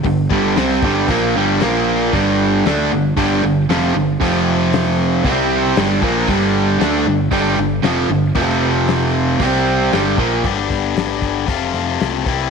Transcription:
0.04 picked electric bass G1, distorted electric guitar G2 D3, kick, open hi-hat
0.29 picked electric bass G1, distorted electric guitar G2 D3 G3, kick
0.56 picked electric bass C2, distorted electric guitar C3 G3 C4, snare, open hi-hat
0.71 snare
0.82 picked electric bass G1, distorted electric guitar G2 D3 G3, kick
1.08 picked electric bass A#1, distorted electric guitar A#2 F3 A#3, kick, open hi-hat
1.35 picked electric bass G1, distorted electric guitar G2 D3 G3
1.60 picked electric bass A#1, distorted electric guitar A#2 F3 A#3, snare, open hi-hat
2.13 picked electric bass G1, distorted electric guitar G2 D3 G3, kick, open hi-hat
2.66 picked electric bass D2, distorted electric guitar D3 A3 D4, snare, open hi-hat
2.80 snare
2.91 picked electric bass G1, distorted electric guitar G2 D3
3.17 picked electric bass G1, distorted electric guitar G2 D3 G3, kick, open hi-hat
3.43 picked electric bass G1, distorted electric guitar G2 D3
3.69 picked electric bass F1, distorted electric guitar F2 C3 F3, snare, open hi-hat
3.94 picked electric bass G1, distorted electric guitar G2 D3
4.21 picked electric bass F1, distorted electric guitar F2 C3 F3, kick, open hi-hat
4.73 snare, open hi-hat
5.24 picked electric bass C2, distorted electric guitar C3 G3 C4, kick, open hi-hat
5.76 picked electric bass G1, distorted electric guitar G2 D3 G3, snare, open hi-hat
6.02 picked electric bass A#1, distorted electric guitar A#2 F3 A#3, kick
6.28 picked electric bass G1, distorted electric guitar G2 D3 G3, kick, open hi-hat
6.80 picked electric bass D2, distorted electric guitar D3 A3 D4, snare, open hi-hat
7.05 picked electric bass G1, distorted electric guitar G2 D3
7.31 picked electric bass G1, distorted electric guitar G2 D3 G3, kick, open hi-hat
7.58 picked electric bass G1, distorted electric guitar G2 D3
7.83 picked electric bass F1, distorted electric guitar F2 C3 F3, snare, open hi-hat
8.09 picked electric bass G1, distorted electric guitar G2 D3
8.35 picked electric bass F1, distorted electric guitar F2 C3 F3, kick, open hi-hat
8.50 snare
8.88 snare, open hi-hat
9.02 snare
9.40 picked electric bass C2, distorted electric guitar C3 G3 C4, kick, open hi-hat
9.92 picked electric bass G1, distorted electric guitar G2 D3 G3, snare, open hi-hat
10.18 picked electric bass A#1, distorted electric guitar A#2 F3 A#3, kick
10.44 picked electric bass G1, distorted electric guitar G2 D3 G3 B3 D4 G4, kick, crash
10.70 picked electric bass G1, kick, open hi-hat
10.97 picked electric bass G1, snare, open hi-hat
11.22 kick, open hi-hat
11.47 picked electric bass F1, distorted electric guitar F2 C3 F3 A3 C4 F4, kick, open hi-hat
11.74 picked electric bass F1, open hi-hat
12.00 picked electric bass C2, snare, open hi-hat
12.26 picked electric bass C2, distorted electric guitar C3 E3 G3 C4 E4, kick, open hi-hat

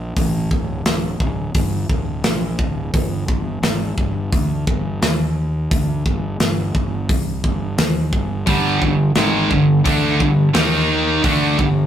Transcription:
Already playing: fingered electric bass A#1
0.17 fingered electric bass A1, kick, open hi-hat
0.51 fingered electric bass D1, kick
0.85 fingered electric bass D1, snare, open hi-hat
1.20 fingered electric bass D1, kick
1.55 fingered electric bass G1, kick, open hi-hat
1.89 fingered electric bass D1, kick
2.24 fingered electric bass A#1, snare, open hi-hat
2.59 fingered electric bass D1, kick
2.94 fingered electric bass G1, kick, open hi-hat
3.28 fingered electric bass G1, kick
3.62 fingered electric bass G#1, snare, open hi-hat
3.98 fingered electric bass G1, kick
4.33 fingered electric bass D2, kick, open hi-hat
4.67 fingered electric bass G1, kick
5.02 fingered electric bass D#2, snare, open hi-hat
5.71 fingered electric bass D2, kick, open hi-hat
6.06 fingered electric bass G1, kick
6.40 fingered electric bass G1, snare, open hi-hat
6.75 fingered electric bass G1, kick
7.09 fingered electric bass C2, kick, open hi-hat
7.44 fingered electric bass G1, kick
7.78 fingered electric bass D#2, snare, open hi-hat
8.13 fingered electric bass G1, kick
8.46 fingered electric bass G1, distorted electric guitar G2 D3 G3, kick, open hi-hat
8.82 fingered electric bass G1, distorted electric guitar G2 D3, kick
9.15 fingered electric bass G#1, distorted electric guitar G#2 D#3 G#3, snare, open hi-hat
9.51 fingered electric bass G1, distorted electric guitar G2 D3, kick
9.85 fingered electric bass D2, distorted electric guitar D3 A3 D4, kick, open hi-hat
10.20 fingered electric bass G1, distorted electric guitar G2 D3, kick
10.54 fingered electric bass D#2, distorted electric guitar D#3 A#3 D#4, snare, open hi-hat
11.24 fingered electric bass D2, distorted electric guitar D3 A3 D4, kick, open hi-hat
11.57 fingered electric bass G1, distorted electric guitar G2 D3, kick

